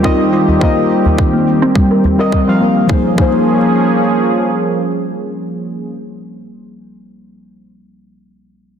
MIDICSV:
0, 0, Header, 1, 6, 480
1, 0, Start_track
1, 0, Tempo, 571429
1, 512, Time_signature, 4, 2, 24, 8
1, 7389, End_track
2, 0, Start_track
2, 0, Title_t, "Synth stab"
2, 0, Program_c, 0, 62
2, 0, Control_c, 0, 64, 127
2, 0, Note_on_c, 0, 55, 77
2, 0, Note_on_c, 0, 60, 70
2, 0, Note_on_c, 0, 65, 78
2, 0, Note_on_c, 0, 70, 72
2, 0, Note_on_c, 0, 75, 90
2, 24, Note_off_c, 0, 55, 0
2, 24, Note_on_c, 0, 55, 81
2, 27, Note_off_c, 0, 60, 0
2, 27, Note_on_c, 0, 60, 77
2, 32, Note_off_c, 0, 65, 0
2, 32, Note_on_c, 0, 65, 78
2, 36, Note_off_c, 0, 70, 0
2, 36, Note_on_c, 0, 70, 75
2, 41, Note_off_c, 0, 75, 0
2, 41, Note_on_c, 0, 75, 94
2, 482, Note_off_c, 0, 55, 0
2, 484, Note_off_c, 0, 60, 0
2, 486, Note_off_c, 0, 65, 0
2, 488, Note_off_c, 0, 70, 0
2, 491, Note_off_c, 0, 75, 0
2, 499, Note_on_c, 0, 55, 84
2, 507, Note_on_c, 0, 60, 75
2, 516, Note_on_c, 0, 65, 68
2, 524, Note_on_c, 0, 70, 76
2, 532, Note_on_c, 0, 75, 86
2, 1812, Note_off_c, 0, 55, 0
2, 1815, Note_off_c, 0, 60, 0
2, 1820, Note_off_c, 0, 65, 0
2, 1824, Note_off_c, 0, 70, 0
2, 1828, Note_off_c, 0, 75, 0
2, 1836, Note_on_c, 0, 55, 99
2, 1838, Note_on_c, 0, 60, 83
2, 1846, Note_on_c, 0, 65, 88
2, 1848, Note_on_c, 0, 70, 87
2, 1852, Note_on_c, 0, 75, 108
2, 2049, Note_off_c, 0, 55, 0
2, 2050, Note_off_c, 0, 60, 0
2, 2053, Note_off_c, 0, 65, 0
2, 2054, Note_off_c, 0, 70, 0
2, 2057, Note_off_c, 0, 75, 0
2, 2074, Note_on_c, 0, 55, 86
2, 2080, Note_on_c, 0, 60, 85
2, 2085, Note_on_c, 0, 65, 85
2, 2088, Note_on_c, 0, 70, 78
2, 2091, Note_on_c, 0, 77, 98
2, 2401, Note_off_c, 0, 55, 0
2, 2404, Note_off_c, 0, 60, 0
2, 2406, Note_off_c, 0, 65, 0
2, 2408, Note_off_c, 0, 70, 0
2, 2409, Note_on_c, 0, 53, 79
2, 2410, Note_off_c, 0, 77, 0
2, 2421, Note_on_c, 0, 58, 74
2, 2434, Note_on_c, 0, 63, 68
2, 2443, Control_c, 0, 64, 0
2, 2445, Note_on_c, 0, 68, 74
2, 2460, Note_on_c, 0, 72, 88
2, 2563, Note_off_c, 0, 53, 0
2, 2570, Note_off_c, 0, 58, 0
2, 2576, Note_off_c, 0, 63, 0
2, 2582, Note_off_c, 0, 68, 0
2, 2590, Note_off_c, 0, 72, 0
2, 2611, Control_c, 0, 64, 127
2, 2648, Note_on_c, 0, 53, 81
2, 2662, Note_on_c, 0, 58, 74
2, 2675, Note_on_c, 0, 63, 75
2, 2685, Note_on_c, 0, 68, 78
2, 2698, Note_on_c, 0, 72, 91
2, 5567, Note_off_c, 0, 53, 0
2, 5574, Note_off_c, 0, 58, 0
2, 5580, Note_off_c, 0, 63, 0
2, 5585, Note_off_c, 0, 68, 0
2, 5592, Note_off_c, 0, 72, 0
2, 6464, Control_c, 0, 64, 0
2, 7389, End_track
3, 0, Start_track
3, 0, Title_t, "Analog synth pad"
3, 0, Program_c, 1, 89
3, 0, Note_on_c, 1, 51, 78
3, 0, Note_on_c, 1, 55, 73
3, 0, Note_on_c, 1, 60, 74
3, 0, Note_on_c, 1, 67, 81
3, 2399, Note_off_c, 1, 60, 0
3, 2400, Note_off_c, 1, 51, 0
3, 2401, Note_off_c, 1, 55, 0
3, 2401, Note_off_c, 1, 67, 0
3, 2427, Note_on_c, 1, 53, 72
3, 2427, Note_on_c, 1, 58, 69
3, 2428, Note_on_c, 1, 61, 68
3, 2429, Note_on_c, 1, 68, 85
3, 4988, Note_off_c, 1, 53, 0
3, 4988, Note_off_c, 1, 58, 0
3, 4988, Note_off_c, 1, 61, 0
3, 4989, Note_off_c, 1, 68, 0
3, 7389, End_track
4, 0, Start_track
4, 0, Title_t, "Kalimba"
4, 0, Program_c, 2, 108
4, 31, Note_on_c, 2, 63, 74
4, 261, Note_off_c, 2, 63, 0
4, 275, Note_on_c, 2, 65, 71
4, 400, Note_off_c, 2, 65, 0
4, 514, Note_on_c, 2, 58, 69
4, 983, Note_off_c, 2, 58, 0
4, 1120, Note_on_c, 2, 58, 67
4, 1225, Note_off_c, 2, 58, 0
4, 1363, Note_on_c, 2, 60, 92
4, 1461, Note_off_c, 2, 60, 0
4, 1473, Note_on_c, 2, 55, 70
4, 1592, Note_off_c, 2, 55, 0
4, 1603, Note_on_c, 2, 70, 65
4, 1701, Note_off_c, 2, 70, 0
4, 1842, Note_on_c, 2, 70, 83
4, 1946, Note_off_c, 2, 70, 0
4, 2079, Note_on_c, 2, 53, 69
4, 2179, Note_off_c, 2, 53, 0
4, 2191, Note_on_c, 2, 58, 87
4, 2311, Note_off_c, 2, 58, 0
4, 2322, Note_on_c, 2, 58, 65
4, 2418, Note_off_c, 2, 58, 0
4, 2428, Note_on_c, 2, 58, 72
4, 2573, Note_off_c, 2, 58, 0
4, 2671, Note_on_c, 2, 58, 75
4, 2815, Note_off_c, 2, 58, 0
4, 7389, End_track
5, 0, Start_track
5, 0, Title_t, "Udu"
5, 402, Note_on_c, 9, 64, 77
5, 486, Note_off_c, 9, 64, 0
5, 886, Note_on_c, 9, 64, 74
5, 970, Note_off_c, 9, 64, 0
5, 1715, Note_on_c, 9, 64, 82
5, 1799, Note_off_c, 9, 64, 0
5, 7389, End_track
6, 0, Start_track
6, 0, Title_t, "Drums"
6, 36, Note_on_c, 9, 36, 80
6, 120, Note_off_c, 9, 36, 0
6, 166, Note_on_c, 9, 69, 18
6, 250, Note_off_c, 9, 69, 0
6, 274, Note_on_c, 9, 69, 69
6, 358, Note_off_c, 9, 69, 0
6, 407, Note_on_c, 9, 69, 29
6, 491, Note_off_c, 9, 69, 0
6, 516, Note_on_c, 9, 36, 93
6, 600, Note_off_c, 9, 36, 0
6, 648, Note_on_c, 9, 69, 20
6, 732, Note_off_c, 9, 69, 0
6, 754, Note_on_c, 9, 69, 67
6, 838, Note_off_c, 9, 69, 0
6, 889, Note_on_c, 9, 69, 26
6, 973, Note_off_c, 9, 69, 0
6, 995, Note_on_c, 9, 36, 88
6, 1079, Note_off_c, 9, 36, 0
6, 1128, Note_on_c, 9, 69, 19
6, 1212, Note_off_c, 9, 69, 0
6, 1238, Note_on_c, 9, 69, 59
6, 1322, Note_off_c, 9, 69, 0
6, 1369, Note_on_c, 9, 69, 28
6, 1453, Note_off_c, 9, 69, 0
6, 1474, Note_on_c, 9, 36, 89
6, 1558, Note_off_c, 9, 36, 0
6, 1610, Note_on_c, 9, 69, 19
6, 1694, Note_off_c, 9, 69, 0
6, 1714, Note_on_c, 9, 69, 67
6, 1798, Note_off_c, 9, 69, 0
6, 1952, Note_on_c, 9, 36, 80
6, 2036, Note_off_c, 9, 36, 0
6, 2195, Note_on_c, 9, 69, 65
6, 2279, Note_off_c, 9, 69, 0
6, 2332, Note_on_c, 9, 69, 30
6, 2416, Note_off_c, 9, 69, 0
6, 2431, Note_on_c, 9, 36, 107
6, 2515, Note_off_c, 9, 36, 0
6, 2672, Note_on_c, 9, 36, 99
6, 2756, Note_off_c, 9, 36, 0
6, 7389, End_track
0, 0, End_of_file